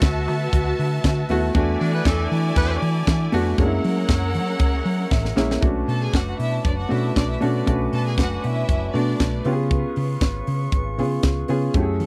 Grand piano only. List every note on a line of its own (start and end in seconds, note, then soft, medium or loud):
0.00 1.30 A3 loud
0.00 1.30 B3 medium
0.00 1.31 E4 medium
0.00 1.31 F#4 loud
1.30 1.49 A3 medium
1.30 1.49 B3 medium
1.30 1.49 E4 medium
1.30 1.49 F#4 loud
1.55 2.30 A3 medium
1.55 2.30 B3 medium
1.55 2.30 D4 medium
1.55 2.31 F#4 loud
3.32 3.52 A3 medium
3.32 3.52 B3 medium
3.32 3.52 D4 medium
3.32 3.53 F#4 loud
3.58 4.34 G#3 loud
3.58 4.34 A#3 medium
3.58 4.34 C#4 medium
3.58 3.66 D4 medium
3.66 4.38 E4 medium
5.12 5.35 E5 medium
5.36 5.56 G#3 medium
5.36 5.56 A#3 medium
5.36 5.56 C#4 medium
5.36 5.57 E4 loud
5.36 5.61 C#5 medium
5.61 6.37 A3 medium
5.61 6.37 C#4 medium
5.61 6.38 D4 medium
5.61 6.38 F#4 medium
6.89 7.28 A3 medium
6.89 7.28 C#4 medium
6.89 7.28 D4 medium
6.89 7.29 F#4 medium
7.41 7.60 A3 medium
7.41 7.60 C#4 medium
7.41 7.61 D4 medium
7.41 7.61 F#4 loud
7.66 8.42 A3 medium
7.66 8.42 C#4 medium
7.66 8.42 D4 medium
7.66 8.43 F#4 medium
8.94 9.32 A3 medium
8.94 9.33 B3 medium
8.94 9.33 D4 medium
8.94 9.33 F#4 medium
9.45 10.27 B3 medium
9.45 10.27 C#4 medium
9.45 10.27 F4 medium
9.45 9.52 G4 medium
9.52 10.31 G#4 loud
10.98 11.36 B3 medium
10.98 11.37 C#4 medium
10.98 11.37 F4 medium
10.98 11.37 G#4 medium
11.49 11.68 B3 medium
11.49 11.68 C#4 medium
11.49 11.68 F4 medium
11.49 11.69 G#4 loud
11.75 12.06 A3 medium
11.75 12.06 C#4 medium
11.75 12.06 E4 medium
11.75 11.82 G4 medium
11.83 12.06 G#4 medium